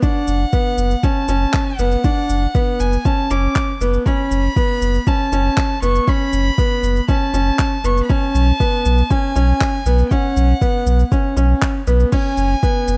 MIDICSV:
0, 0, Header, 1, 5, 480
1, 0, Start_track
1, 0, Key_signature, 3, "minor"
1, 0, Tempo, 504202
1, 25, Time_signature, 4, 2, 24, 8
1, 12350, End_track
2, 0, Start_track
2, 0, Title_t, "Violin"
2, 0, Program_c, 0, 40
2, 26, Note_on_c, 0, 78, 100
2, 989, Note_on_c, 0, 81, 105
2, 1003, Note_off_c, 0, 78, 0
2, 1696, Note_on_c, 0, 78, 110
2, 1711, Note_off_c, 0, 81, 0
2, 2668, Note_on_c, 0, 80, 94
2, 2682, Note_off_c, 0, 78, 0
2, 2907, Note_on_c, 0, 81, 112
2, 2921, Note_off_c, 0, 80, 0
2, 3149, Note_on_c, 0, 86, 95
2, 3163, Note_off_c, 0, 81, 0
2, 3627, Note_off_c, 0, 86, 0
2, 3866, Note_on_c, 0, 83, 123
2, 4834, Note_on_c, 0, 81, 110
2, 4848, Note_off_c, 0, 83, 0
2, 5549, Note_off_c, 0, 81, 0
2, 5555, Note_on_c, 0, 85, 113
2, 5795, Note_on_c, 0, 83, 127
2, 5809, Note_off_c, 0, 85, 0
2, 6750, Note_off_c, 0, 83, 0
2, 6764, Note_on_c, 0, 81, 119
2, 7477, Note_on_c, 0, 85, 102
2, 7491, Note_off_c, 0, 81, 0
2, 7639, Note_off_c, 0, 85, 0
2, 7645, Note_on_c, 0, 83, 83
2, 7711, Note_on_c, 0, 81, 117
2, 7726, Note_off_c, 0, 83, 0
2, 8671, Note_on_c, 0, 80, 114
2, 8686, Note_off_c, 0, 81, 0
2, 9633, Note_on_c, 0, 78, 101
2, 9647, Note_off_c, 0, 80, 0
2, 11069, Note_off_c, 0, 78, 0
2, 11547, Note_on_c, 0, 80, 115
2, 12350, Note_off_c, 0, 80, 0
2, 12350, End_track
3, 0, Start_track
3, 0, Title_t, "Grand piano"
3, 0, Program_c, 1, 0
3, 22, Note_on_c, 1, 62, 95
3, 392, Note_off_c, 1, 62, 0
3, 504, Note_on_c, 1, 59, 87
3, 874, Note_off_c, 1, 59, 0
3, 984, Note_on_c, 1, 61, 90
3, 1169, Note_off_c, 1, 61, 0
3, 1224, Note_on_c, 1, 61, 84
3, 1593, Note_off_c, 1, 61, 0
3, 1707, Note_on_c, 1, 59, 85
3, 1891, Note_off_c, 1, 59, 0
3, 1946, Note_on_c, 1, 62, 101
3, 2315, Note_off_c, 1, 62, 0
3, 2425, Note_on_c, 1, 59, 91
3, 2794, Note_off_c, 1, 59, 0
3, 2906, Note_on_c, 1, 61, 82
3, 3090, Note_off_c, 1, 61, 0
3, 3148, Note_on_c, 1, 61, 84
3, 3515, Note_off_c, 1, 61, 0
3, 3630, Note_on_c, 1, 59, 85
3, 3812, Note_off_c, 1, 59, 0
3, 3872, Note_on_c, 1, 61, 93
3, 4238, Note_off_c, 1, 61, 0
3, 4350, Note_on_c, 1, 59, 86
3, 4717, Note_off_c, 1, 59, 0
3, 4824, Note_on_c, 1, 61, 84
3, 5009, Note_off_c, 1, 61, 0
3, 5069, Note_on_c, 1, 61, 89
3, 5437, Note_off_c, 1, 61, 0
3, 5545, Note_on_c, 1, 59, 89
3, 5729, Note_off_c, 1, 59, 0
3, 5782, Note_on_c, 1, 61, 96
3, 6152, Note_off_c, 1, 61, 0
3, 6269, Note_on_c, 1, 59, 83
3, 6636, Note_off_c, 1, 59, 0
3, 6745, Note_on_c, 1, 61, 87
3, 6930, Note_off_c, 1, 61, 0
3, 6985, Note_on_c, 1, 61, 86
3, 7354, Note_off_c, 1, 61, 0
3, 7466, Note_on_c, 1, 59, 85
3, 7650, Note_off_c, 1, 59, 0
3, 7705, Note_on_c, 1, 61, 99
3, 8074, Note_off_c, 1, 61, 0
3, 8187, Note_on_c, 1, 59, 93
3, 8555, Note_off_c, 1, 59, 0
3, 8668, Note_on_c, 1, 61, 85
3, 8851, Note_off_c, 1, 61, 0
3, 8907, Note_on_c, 1, 61, 85
3, 9275, Note_off_c, 1, 61, 0
3, 9390, Note_on_c, 1, 59, 82
3, 9573, Note_off_c, 1, 59, 0
3, 9628, Note_on_c, 1, 61, 102
3, 9996, Note_off_c, 1, 61, 0
3, 10105, Note_on_c, 1, 59, 88
3, 10474, Note_off_c, 1, 59, 0
3, 10584, Note_on_c, 1, 61, 86
3, 10769, Note_off_c, 1, 61, 0
3, 10821, Note_on_c, 1, 61, 83
3, 11191, Note_off_c, 1, 61, 0
3, 11304, Note_on_c, 1, 59, 88
3, 11489, Note_off_c, 1, 59, 0
3, 11541, Note_on_c, 1, 61, 98
3, 11911, Note_off_c, 1, 61, 0
3, 12023, Note_on_c, 1, 59, 88
3, 12350, Note_off_c, 1, 59, 0
3, 12350, End_track
4, 0, Start_track
4, 0, Title_t, "Sub bass"
4, 0, Program_c, 2, 38
4, 263, Note_on_c, 2, 30, 97
4, 430, Note_off_c, 2, 30, 0
4, 738, Note_on_c, 2, 30, 96
4, 908, Note_off_c, 2, 30, 0
4, 1221, Note_on_c, 2, 30, 100
4, 1389, Note_off_c, 2, 30, 0
4, 1702, Note_on_c, 2, 30, 103
4, 1869, Note_off_c, 2, 30, 0
4, 2183, Note_on_c, 2, 30, 100
4, 2350, Note_off_c, 2, 30, 0
4, 2664, Note_on_c, 2, 30, 97
4, 2831, Note_off_c, 2, 30, 0
4, 3146, Note_on_c, 2, 30, 91
4, 3311, Note_off_c, 2, 30, 0
4, 3624, Note_on_c, 2, 30, 88
4, 3790, Note_off_c, 2, 30, 0
4, 4104, Note_on_c, 2, 30, 101
4, 4270, Note_off_c, 2, 30, 0
4, 4584, Note_on_c, 2, 30, 95
4, 4750, Note_off_c, 2, 30, 0
4, 5064, Note_on_c, 2, 30, 91
4, 5230, Note_off_c, 2, 30, 0
4, 5542, Note_on_c, 2, 30, 94
4, 5709, Note_off_c, 2, 30, 0
4, 6025, Note_on_c, 2, 30, 99
4, 6191, Note_off_c, 2, 30, 0
4, 6501, Note_on_c, 2, 30, 95
4, 6669, Note_off_c, 2, 30, 0
4, 6981, Note_on_c, 2, 30, 87
4, 7149, Note_off_c, 2, 30, 0
4, 7463, Note_on_c, 2, 30, 100
4, 7630, Note_off_c, 2, 30, 0
4, 7945, Note_on_c, 2, 35, 101
4, 8111, Note_off_c, 2, 35, 0
4, 8429, Note_on_c, 2, 35, 96
4, 8593, Note_off_c, 2, 35, 0
4, 8908, Note_on_c, 2, 35, 89
4, 9072, Note_off_c, 2, 35, 0
4, 9384, Note_on_c, 2, 35, 96
4, 9551, Note_off_c, 2, 35, 0
4, 9867, Note_on_c, 2, 35, 98
4, 10032, Note_off_c, 2, 35, 0
4, 10340, Note_on_c, 2, 35, 99
4, 10509, Note_off_c, 2, 35, 0
4, 10820, Note_on_c, 2, 35, 84
4, 10988, Note_off_c, 2, 35, 0
4, 11302, Note_on_c, 2, 35, 97
4, 11469, Note_off_c, 2, 35, 0
4, 11779, Note_on_c, 2, 30, 96
4, 11948, Note_off_c, 2, 30, 0
4, 12260, Note_on_c, 2, 30, 97
4, 12350, Note_off_c, 2, 30, 0
4, 12350, End_track
5, 0, Start_track
5, 0, Title_t, "Drums"
5, 24, Note_on_c, 9, 82, 45
5, 25, Note_on_c, 9, 36, 110
5, 119, Note_off_c, 9, 82, 0
5, 120, Note_off_c, 9, 36, 0
5, 262, Note_on_c, 9, 82, 64
5, 358, Note_off_c, 9, 82, 0
5, 501, Note_on_c, 9, 82, 44
5, 505, Note_on_c, 9, 36, 108
5, 596, Note_off_c, 9, 82, 0
5, 600, Note_off_c, 9, 36, 0
5, 742, Note_on_c, 9, 82, 65
5, 837, Note_off_c, 9, 82, 0
5, 862, Note_on_c, 9, 82, 29
5, 957, Note_off_c, 9, 82, 0
5, 983, Note_on_c, 9, 82, 48
5, 985, Note_on_c, 9, 36, 107
5, 1079, Note_off_c, 9, 82, 0
5, 1080, Note_off_c, 9, 36, 0
5, 1221, Note_on_c, 9, 82, 65
5, 1317, Note_off_c, 9, 82, 0
5, 1462, Note_on_c, 9, 39, 70
5, 1462, Note_on_c, 9, 82, 45
5, 1466, Note_on_c, 9, 36, 104
5, 1557, Note_off_c, 9, 39, 0
5, 1557, Note_off_c, 9, 82, 0
5, 1561, Note_off_c, 9, 36, 0
5, 1703, Note_on_c, 9, 82, 64
5, 1798, Note_off_c, 9, 82, 0
5, 1823, Note_on_c, 9, 82, 30
5, 1918, Note_off_c, 9, 82, 0
5, 1942, Note_on_c, 9, 82, 44
5, 1945, Note_on_c, 9, 36, 108
5, 2037, Note_off_c, 9, 82, 0
5, 2040, Note_off_c, 9, 36, 0
5, 2184, Note_on_c, 9, 82, 64
5, 2279, Note_off_c, 9, 82, 0
5, 2425, Note_on_c, 9, 82, 42
5, 2426, Note_on_c, 9, 36, 110
5, 2520, Note_off_c, 9, 82, 0
5, 2521, Note_off_c, 9, 36, 0
5, 2664, Note_on_c, 9, 82, 65
5, 2759, Note_off_c, 9, 82, 0
5, 2784, Note_on_c, 9, 82, 30
5, 2880, Note_off_c, 9, 82, 0
5, 2905, Note_on_c, 9, 82, 45
5, 2906, Note_on_c, 9, 36, 105
5, 3001, Note_off_c, 9, 36, 0
5, 3001, Note_off_c, 9, 82, 0
5, 3146, Note_on_c, 9, 82, 63
5, 3242, Note_off_c, 9, 82, 0
5, 3385, Note_on_c, 9, 36, 103
5, 3388, Note_on_c, 9, 39, 66
5, 3388, Note_on_c, 9, 82, 44
5, 3481, Note_off_c, 9, 36, 0
5, 3483, Note_off_c, 9, 39, 0
5, 3483, Note_off_c, 9, 82, 0
5, 3627, Note_on_c, 9, 82, 67
5, 3722, Note_off_c, 9, 82, 0
5, 3746, Note_on_c, 9, 82, 31
5, 3841, Note_off_c, 9, 82, 0
5, 3865, Note_on_c, 9, 36, 100
5, 3867, Note_on_c, 9, 82, 39
5, 3960, Note_off_c, 9, 36, 0
5, 3962, Note_off_c, 9, 82, 0
5, 4107, Note_on_c, 9, 82, 60
5, 4202, Note_off_c, 9, 82, 0
5, 4345, Note_on_c, 9, 36, 108
5, 4348, Note_on_c, 9, 82, 41
5, 4440, Note_off_c, 9, 36, 0
5, 4443, Note_off_c, 9, 82, 0
5, 4587, Note_on_c, 9, 82, 64
5, 4682, Note_off_c, 9, 82, 0
5, 4707, Note_on_c, 9, 82, 28
5, 4802, Note_off_c, 9, 82, 0
5, 4825, Note_on_c, 9, 36, 106
5, 4825, Note_on_c, 9, 82, 43
5, 4921, Note_off_c, 9, 36, 0
5, 4921, Note_off_c, 9, 82, 0
5, 5068, Note_on_c, 9, 82, 61
5, 5163, Note_off_c, 9, 82, 0
5, 5305, Note_on_c, 9, 36, 100
5, 5307, Note_on_c, 9, 39, 64
5, 5307, Note_on_c, 9, 82, 43
5, 5400, Note_off_c, 9, 36, 0
5, 5402, Note_off_c, 9, 39, 0
5, 5402, Note_off_c, 9, 82, 0
5, 5546, Note_on_c, 9, 82, 60
5, 5641, Note_off_c, 9, 82, 0
5, 5664, Note_on_c, 9, 82, 29
5, 5760, Note_off_c, 9, 82, 0
5, 5784, Note_on_c, 9, 82, 38
5, 5785, Note_on_c, 9, 36, 100
5, 5879, Note_off_c, 9, 82, 0
5, 5880, Note_off_c, 9, 36, 0
5, 6025, Note_on_c, 9, 82, 61
5, 6120, Note_off_c, 9, 82, 0
5, 6266, Note_on_c, 9, 36, 106
5, 6267, Note_on_c, 9, 82, 42
5, 6361, Note_off_c, 9, 36, 0
5, 6362, Note_off_c, 9, 82, 0
5, 6508, Note_on_c, 9, 82, 59
5, 6603, Note_off_c, 9, 82, 0
5, 6628, Note_on_c, 9, 82, 25
5, 6723, Note_off_c, 9, 82, 0
5, 6745, Note_on_c, 9, 36, 98
5, 6747, Note_on_c, 9, 82, 43
5, 6841, Note_off_c, 9, 36, 0
5, 6842, Note_off_c, 9, 82, 0
5, 6989, Note_on_c, 9, 82, 59
5, 7084, Note_off_c, 9, 82, 0
5, 7226, Note_on_c, 9, 39, 69
5, 7226, Note_on_c, 9, 82, 43
5, 7227, Note_on_c, 9, 36, 100
5, 7321, Note_off_c, 9, 39, 0
5, 7321, Note_off_c, 9, 82, 0
5, 7322, Note_off_c, 9, 36, 0
5, 7468, Note_on_c, 9, 82, 59
5, 7563, Note_off_c, 9, 82, 0
5, 7589, Note_on_c, 9, 82, 28
5, 7684, Note_off_c, 9, 82, 0
5, 7707, Note_on_c, 9, 82, 38
5, 7708, Note_on_c, 9, 36, 101
5, 7803, Note_off_c, 9, 36, 0
5, 7803, Note_off_c, 9, 82, 0
5, 7949, Note_on_c, 9, 82, 62
5, 8044, Note_off_c, 9, 82, 0
5, 8189, Note_on_c, 9, 36, 95
5, 8189, Note_on_c, 9, 82, 42
5, 8284, Note_off_c, 9, 36, 0
5, 8284, Note_off_c, 9, 82, 0
5, 8428, Note_on_c, 9, 82, 56
5, 8523, Note_off_c, 9, 82, 0
5, 8548, Note_on_c, 9, 82, 26
5, 8643, Note_off_c, 9, 82, 0
5, 8669, Note_on_c, 9, 36, 104
5, 8669, Note_on_c, 9, 82, 42
5, 8764, Note_off_c, 9, 36, 0
5, 8765, Note_off_c, 9, 82, 0
5, 8910, Note_on_c, 9, 82, 55
5, 9005, Note_off_c, 9, 82, 0
5, 9148, Note_on_c, 9, 36, 93
5, 9150, Note_on_c, 9, 39, 71
5, 9150, Note_on_c, 9, 82, 40
5, 9243, Note_off_c, 9, 36, 0
5, 9246, Note_off_c, 9, 39, 0
5, 9246, Note_off_c, 9, 82, 0
5, 9387, Note_on_c, 9, 82, 60
5, 9482, Note_off_c, 9, 82, 0
5, 9506, Note_on_c, 9, 82, 27
5, 9601, Note_off_c, 9, 82, 0
5, 9626, Note_on_c, 9, 82, 42
5, 9627, Note_on_c, 9, 36, 99
5, 9721, Note_off_c, 9, 82, 0
5, 9722, Note_off_c, 9, 36, 0
5, 9869, Note_on_c, 9, 82, 58
5, 9964, Note_off_c, 9, 82, 0
5, 10105, Note_on_c, 9, 36, 102
5, 10106, Note_on_c, 9, 82, 42
5, 10201, Note_off_c, 9, 36, 0
5, 10201, Note_off_c, 9, 82, 0
5, 10345, Note_on_c, 9, 82, 60
5, 10440, Note_off_c, 9, 82, 0
5, 10466, Note_on_c, 9, 82, 27
5, 10561, Note_off_c, 9, 82, 0
5, 10584, Note_on_c, 9, 36, 104
5, 10584, Note_on_c, 9, 82, 41
5, 10679, Note_off_c, 9, 36, 0
5, 10679, Note_off_c, 9, 82, 0
5, 10824, Note_on_c, 9, 82, 60
5, 10920, Note_off_c, 9, 82, 0
5, 11064, Note_on_c, 9, 36, 92
5, 11065, Note_on_c, 9, 39, 75
5, 11065, Note_on_c, 9, 82, 40
5, 11159, Note_off_c, 9, 36, 0
5, 11160, Note_off_c, 9, 39, 0
5, 11160, Note_off_c, 9, 82, 0
5, 11303, Note_on_c, 9, 82, 59
5, 11398, Note_off_c, 9, 82, 0
5, 11423, Note_on_c, 9, 82, 28
5, 11519, Note_off_c, 9, 82, 0
5, 11543, Note_on_c, 9, 36, 105
5, 11543, Note_on_c, 9, 49, 79
5, 11543, Note_on_c, 9, 82, 45
5, 11638, Note_off_c, 9, 36, 0
5, 11638, Note_off_c, 9, 49, 0
5, 11638, Note_off_c, 9, 82, 0
5, 11782, Note_on_c, 9, 82, 62
5, 11877, Note_off_c, 9, 82, 0
5, 12023, Note_on_c, 9, 82, 41
5, 12024, Note_on_c, 9, 36, 110
5, 12118, Note_off_c, 9, 82, 0
5, 12119, Note_off_c, 9, 36, 0
5, 12261, Note_on_c, 9, 82, 65
5, 12350, Note_off_c, 9, 82, 0
5, 12350, End_track
0, 0, End_of_file